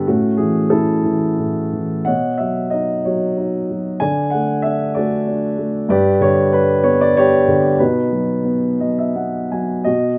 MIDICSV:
0, 0, Header, 1, 2, 480
1, 0, Start_track
1, 0, Tempo, 638298
1, 55, Time_signature, 3, 2, 24, 8
1, 536, Tempo, 666667
1, 2456, Tempo, 632911
1, 6296, Tempo, 700117
1, 7490, End_track
2, 0, Start_track
2, 0, Title_t, "Grand piano"
2, 0, Program_c, 0, 0
2, 0, Control_c, 0, 64, 127
2, 54, Note_on_c, 0, 66, 60
2, 57, Note_on_c, 0, 45, 42
2, 61, Note_on_c, 0, 61, 41
2, 63, Note_on_c, 0, 57, 41
2, 64, Control_c, 0, 64, 0
2, 200, Control_c, 0, 64, 127
2, 276, Note_off_c, 0, 66, 0
2, 280, Note_on_c, 0, 68, 63
2, 294, Note_on_c, 0, 52, 32
2, 523, Note_off_c, 0, 45, 0
2, 527, Note_on_c, 0, 69, 57
2, 534, Note_off_c, 0, 61, 0
2, 534, Note_on_c, 0, 45, 35
2, 537, Note_off_c, 0, 68, 0
2, 543, Note_on_c, 0, 64, 40
2, 545, Note_on_c, 0, 61, 39
2, 749, Note_off_c, 0, 57, 0
2, 766, Note_off_c, 0, 52, 0
2, 777, Note_on_c, 0, 52, 35
2, 1010, Note_off_c, 0, 45, 0
2, 1021, Note_on_c, 0, 45, 34
2, 1235, Note_off_c, 0, 69, 0
2, 1242, Note_off_c, 0, 64, 0
2, 1243, Note_off_c, 0, 61, 0
2, 1260, Note_off_c, 0, 52, 0
2, 1271, Note_on_c, 0, 52, 31
2, 1497, Note_on_c, 0, 78, 59
2, 1499, Note_off_c, 0, 45, 0
2, 1506, Note_on_c, 0, 47, 38
2, 1508, Note_off_c, 0, 52, 0
2, 1513, Note_on_c, 0, 73, 41
2, 1513, Note_on_c, 0, 75, 41
2, 1523, Control_c, 0, 64, 0
2, 1662, Control_c, 0, 64, 127
2, 1734, Note_on_c, 0, 76, 49
2, 1754, Note_off_c, 0, 78, 0
2, 1754, Note_on_c, 0, 54, 31
2, 1959, Note_off_c, 0, 75, 0
2, 1963, Note_off_c, 0, 76, 0
2, 1969, Note_on_c, 0, 75, 54
2, 1992, Note_on_c, 0, 63, 35
2, 2194, Note_off_c, 0, 73, 0
2, 2213, Note_off_c, 0, 54, 0
2, 2219, Note_on_c, 0, 73, 46
2, 2220, Note_off_c, 0, 75, 0
2, 2224, Note_on_c, 0, 54, 36
2, 2224, Note_on_c, 0, 66, 32
2, 2442, Note_off_c, 0, 63, 0
2, 2453, Note_on_c, 0, 63, 35
2, 2666, Note_off_c, 0, 73, 0
2, 2693, Note_off_c, 0, 54, 0
2, 2704, Note_on_c, 0, 54, 33
2, 2905, Note_off_c, 0, 47, 0
2, 2909, Note_off_c, 0, 66, 0
2, 2923, Note_off_c, 0, 63, 0
2, 2926, Note_on_c, 0, 80, 70
2, 2935, Note_off_c, 0, 54, 0
2, 2937, Note_on_c, 0, 50, 48
2, 2940, Note_on_c, 0, 74, 49
2, 2947, Control_c, 0, 64, 0
2, 3064, Control_c, 0, 64, 127
2, 3157, Note_on_c, 0, 78, 61
2, 3180, Note_off_c, 0, 80, 0
2, 3185, Note_on_c, 0, 57, 35
2, 3399, Note_on_c, 0, 76, 61
2, 3418, Note_off_c, 0, 78, 0
2, 3423, Note_on_c, 0, 62, 41
2, 3632, Note_off_c, 0, 74, 0
2, 3644, Note_on_c, 0, 74, 66
2, 3649, Note_off_c, 0, 57, 0
2, 3658, Note_off_c, 0, 76, 0
2, 3660, Note_on_c, 0, 57, 43
2, 3677, Note_on_c, 0, 66, 41
2, 3677, Note_on_c, 0, 69, 35
2, 3879, Note_off_c, 0, 62, 0
2, 3890, Note_on_c, 0, 62, 43
2, 4085, Note_off_c, 0, 74, 0
2, 4114, Note_off_c, 0, 57, 0
2, 4126, Note_on_c, 0, 57, 40
2, 4331, Note_off_c, 0, 50, 0
2, 4339, Note_off_c, 0, 66, 0
2, 4339, Note_off_c, 0, 69, 0
2, 4346, Note_off_c, 0, 62, 0
2, 4355, Note_off_c, 0, 57, 0
2, 4358, Note_on_c, 0, 43, 59
2, 4368, Note_on_c, 0, 71, 56
2, 4368, Note_on_c, 0, 74, 76
2, 4370, Note_on_c, 0, 67, 58
2, 4372, Control_c, 0, 64, 0
2, 4505, Control_c, 0, 64, 127
2, 4601, Note_on_c, 0, 50, 42
2, 4608, Note_on_c, 0, 73, 77
2, 4612, Note_off_c, 0, 74, 0
2, 4828, Note_off_c, 0, 73, 0
2, 4833, Note_off_c, 0, 71, 0
2, 4842, Note_on_c, 0, 55, 47
2, 4844, Note_on_c, 0, 71, 74
2, 5056, Note_off_c, 0, 67, 0
2, 5077, Note_on_c, 0, 59, 47
2, 5077, Note_on_c, 0, 73, 72
2, 5091, Note_off_c, 0, 71, 0
2, 5204, Note_off_c, 0, 73, 0
2, 5211, Note_on_c, 0, 74, 84
2, 5313, Note_off_c, 0, 55, 0
2, 5324, Note_on_c, 0, 55, 43
2, 5331, Note_off_c, 0, 74, 0
2, 5332, Note_on_c, 0, 73, 83
2, 5341, Note_on_c, 0, 67, 63
2, 5534, Note_off_c, 0, 50, 0
2, 5567, Note_on_c, 0, 50, 42
2, 5769, Note_off_c, 0, 43, 0
2, 5777, Note_off_c, 0, 59, 0
2, 5780, Note_off_c, 0, 67, 0
2, 5787, Note_off_c, 0, 55, 0
2, 5796, Note_off_c, 0, 50, 0
2, 5802, Note_on_c, 0, 71, 60
2, 5807, Note_on_c, 0, 47, 54
2, 5810, Note_on_c, 0, 63, 44
2, 5812, Control_c, 0, 64, 0
2, 5813, Note_on_c, 0, 66, 41
2, 5820, Note_off_c, 0, 73, 0
2, 5937, Control_c, 0, 64, 127
2, 6048, Note_on_c, 0, 54, 38
2, 6297, Note_on_c, 0, 59, 39
2, 6536, Note_off_c, 0, 54, 0
2, 6545, Note_on_c, 0, 75, 48
2, 6547, Note_on_c, 0, 54, 37
2, 6652, Note_off_c, 0, 75, 0
2, 6668, Note_on_c, 0, 76, 40
2, 6751, Note_off_c, 0, 71, 0
2, 6755, Note_off_c, 0, 63, 0
2, 6756, Note_off_c, 0, 66, 0
2, 6776, Note_off_c, 0, 59, 0
2, 6776, Note_off_c, 0, 76, 0
2, 6785, Note_on_c, 0, 78, 38
2, 6786, Note_on_c, 0, 59, 32
2, 7009, Note_off_c, 0, 78, 0
2, 7024, Note_off_c, 0, 54, 0
2, 7033, Note_on_c, 0, 80, 37
2, 7034, Note_on_c, 0, 54, 27
2, 7237, Note_off_c, 0, 47, 0
2, 7250, Note_off_c, 0, 80, 0
2, 7251, Note_off_c, 0, 59, 0
2, 7257, Note_on_c, 0, 75, 67
2, 7260, Note_off_c, 0, 54, 0
2, 7267, Note_on_c, 0, 66, 46
2, 7270, Note_on_c, 0, 47, 53
2, 7271, Control_c, 0, 64, 0
2, 7402, Control_c, 0, 64, 127
2, 7476, Note_off_c, 0, 75, 0
2, 7490, Note_off_c, 0, 47, 0
2, 7490, Note_off_c, 0, 66, 0
2, 7490, End_track
0, 0, End_of_file